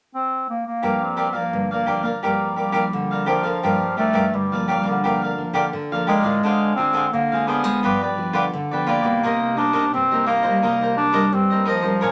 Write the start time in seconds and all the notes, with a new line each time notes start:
0.14 C4
0.49 A#3
0.66 A#3
0.82 G2 F3 A#3 D4 G4 A#4 D5 F5
1.02 C4
1.17 G4 A#4 D5 F5
1.33 F3 A#3 D4 A#4 D5 F5
1.53 G2 D3
1.71 A#3 A#4 D5 F5
1.86 F3 A#3 D4 G4 A#4 D5 F5
2.03 A#3 A#4 D5 F5
2.23 G2 F3 G3 A#3 D4 G4 A#4 D5 F5
2.56 G3 G4 A#4 D5 F5
2.72 F3 A#3 D4 G4 A#4 D5 F5
2.93 D3
3.11 A#4 D5 F5
3.26 F3 A#3 D4 G4 A#4 D5 F5
3.43 D3 A#4 D5 F5
3.63 G2 F3 A#3 D4 G4 A#4 D5 F5
3.97 F3 A3 D4 G4 A#4 D5 F5
4.13 G2 G4 A#4 D5 F5
4.34 G2 D3 G3
4.52 F3 A#3 D4 A#4 D5 F5
4.67 G3 G4 A#4 D5 F5
4.83 D3 A#4 D5 F5
5.03 G2 F3 A#3 D4 G4 A#4 D5 F5
5.22 A#4 D5 F5
5.37 F3 A#3 D4
5.53 D3 G4 A#4 D5 F5
5.73 D3
5.92 F3 A#3 D4 A#4 D5 F5
6.07 G#3 G4 A#4 D5 F5
6.23 A2 G#3 C4 F4 A#4 D5 F5
6.43 D3 D4 G#4 C5 F5
6.75 G#3 C4 D4 F4 G#4 C5
6.80 F5
6.93 D3 D4 G#4 C5 F5
7.12 D3 A#3
7.32 G#3 C4 F4 G#4 C5 F5
7.47 B3 D4 G#4 C5 F5
7.63 G#3 G#4 C5 F5
7.83 G2 F3 B3 D4 F4 G4 B4 D5
8.01 G4 B4 D5
8.18 F3 B3 D4
8.33 D3 F4 G4 B4 D5
8.53 D3
8.71 F3 B3 D4 G4 B4 D5
8.86 A#3 F4 G4 B4 D5
9.03 B2 G3 A#3 D#4 G4 B4 D5
9.23 C3 D#4 A#4 C5 D#5
9.57 G3 A#3 D4 D#4 A#4 C5 D#5
9.73 C3 D#4 A#4 C5 D#5
9.93 G2 C3 C4
10.11 G3 A#3 D#4 A#4 C5 D#5
10.26 A#3 D#4 A#4 C5 D#5
10.42 G3 A#4 C5 D#5
10.63 C3 G3 A#3 D#4 A#4 C5 D#5
10.81 A#4 C5 D#5
10.97 G3 A#3 D4
11.13 G3 D#4 A#4 C5 D#5
11.33 G2 G3 C4
11.50 G3 A#3 D#4 A#4 C5 D#5
11.65 F3 D#4 A#4 C5 D#5
11.81 F3 G3 G#3 C#4 A#4 C5 D#5
12.01 A#2 A#4 C#5 F5 G#5